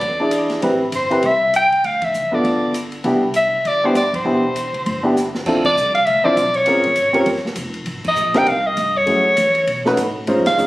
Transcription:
Already playing: D5
0.01 E2, kick, ride
0.20 D4 E4 G#4 D5
0.31 hi-hat pedal, ride
0.50 snare, ride
0.62 A1 C4 E4 G4 B4, kick, ride
0.92 G1 C5, hi-hat pedal, ride
1.10 C4 E4 G4 B4, ride
1.23 C2 E5, kick, ride
1.54 G5, hi-hat pedal, ride
1.72 muted upright bass stroke, ride
1.84 D2 F5, kick, ride
2.02 E5, kick, ride
2.14 F#1, hi-hat pedal
2.32 B3 D4 F4 A4 D5, kick
2.44 G1, kick, ride
2.74 hi-hat pedal, ride
2.92 ride
3.04 C2 B3 D4 E4 G4, kick, ride
3.34 E5, hi-hat pedal, ride
3.52 muted upright bass stroke
3.65 G1 D5, kick, ride
3.84 B3 D4 E4 G4 C5
3.94 G2 D5, hi-hat pedal, ride
4.14 C5, kick, ride
4.25 E1 B3 D4 E4 G4
4.56 hi-hat pedal, ride
4.73 C#2, ride
4.86 G1, kick, ride
5.03 B3 D4 E4 G4
5.17 snare, hi-hat pedal
5.35 snare
5.46 D2 C4 D4 E4 F4 A4, kick, crash
5.64 D5, kick, crash
5.75 C2, hi-hat pedal
5.95 F5, ride
6.06 D2 E5, kick, ride
6.24 C4 D4 E4 F4 C5 D5, muted upright bass stroke, kick
6.36 B1, kick, hi-hat pedal, ride
6.54 C#5, ride
6.66 A#1 C4 C#4 F4 G#4 A#4, kick, ride
6.76 G#1
6.84 F1, ride
6.96 G#1, kick, hi-hat pedal, ride
7.13 C4 C#4 F4 G4 A#4, ride
7.26 G1, kick, ride
7.36 snare
7.44 muted upright bass stroke, snare
7.56 F1, kick, hi-hat pedal, ride
7.74 ride
7.86 G#1, kick, ride
8.04 D#5, kick, crash
8.16 A#1, hi-hat pedal
8.34 C4 D4 D#4 G4 A#4 G5, snare, ride
8.47 C2 F5, kick, ride
8.67 D#5
8.77 G2, kick, hi-hat pedal, ride
8.97 C#5
9.06 F#2 A3 C#4 E4 F#4 G#4, kick, ride
9.37 E2, kick, hi-hat pedal, ride
9.55 ride
9.67 B2, kick, ride
9.85 A3 C#4 D#4 F#4 B4, snare
9.97 A2, kick, hi-hat pedal, ride
10.27 G#2 G#3 C#4 D#4 F4 C5, kick, ride
10.38 F2
10.46 C#2 F5, snare, ride
10.57 F2 G#3 C#4 D#4 F4 G#4, hi-hat pedal

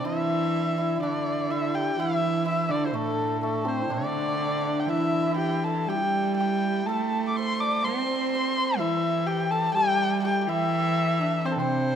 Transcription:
Already playing: C4 D4 G4 A4
0.04 E3 E4 E5
0.78 E4
0.96 E4
1.02 D3 D4 D5
1.51 E4 E5
1.75 G4 G5
1.98 E3 E4 E5
2.46 E4 E5
2.69 D3 D4 D5
2.86 C5
2.94 A2 A3 A4
3.40 A3 A4
3.65 C4 C5
3.82 E4
3.90 D3 D4 D5
3.97 D4
4.04 D4
4.12 D4
4.20 D4
4.28 D4
4.34 D4
4.42 D4
4.49 D4
4.62 D4
4.80 G5
4.86 E3 E4 E5
4.97 E4
5.04 E4
5.11 E4
5.20 E4
5.29 E4
5.35 E4 G4 G5
5.41 E4
5.49 E4
5.56 E4
5.64 E4 A4 A5
5.74 E4
5.86 G3 G4 G5
5.95 E4
6.03 G4
6.37 G4 G5
6.86 A3 A4 A5
7.28 D6
7.36 C5 C6
7.59 D5 D6
7.77 D5
7.83 C4 C5 C6
8.32 C5 C6
8.78 E3 E4 E5
9.26 G4 G5
9.51 A4 A5
9.74 G3 G4 G5
10.23 G4 G5
10.40 G4 G5
10.47 E3 E4 E5
11.20 D4
11.43 C4 C5
11.52 A4
11.57 C3 C4 C5

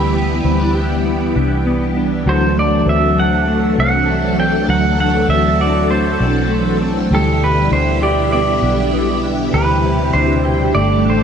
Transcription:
Already playing: D2 E3 G3 B3 E4 G4 B4
0.14 B3
0.44 D2 C4
0.60 D4
0.75 G4
1.05 B3
1.36 C2 D4
1.66 B3
1.96 D4
2.25 D2 F#3 A3 D4 F#4 A4 C5
2.57 A3 D5
2.86 D2 C4 E5
3.20 F#5
3.48 A3
3.78 C2 C4 F#5
4.08 A3
4.39 C4 G5
4.68 D2 F#3 F#4 F#5
4.99 A3 F#5
5.29 D2 C4 E5
5.60 F#4 D5
5.90 A3 C5
6.20 B1 C4
6.51 A3
6.82 C4
7.10 D2 B2 D3 E3 G3 E4 G4
7.15 A4
7.44 B4
7.72 D2 D4 C5
8.02 G4 D5
8.32 B3 D5
8.62 B1 D4
8.93 B3
9.23 D4
9.53 D2 C3 E3 G3 E4 G4 B4
10.13 D2 D4 C5
10.45 G4
10.73 G1 D3 A3 A4 D5
11.05 A1 D4
11.10 C5

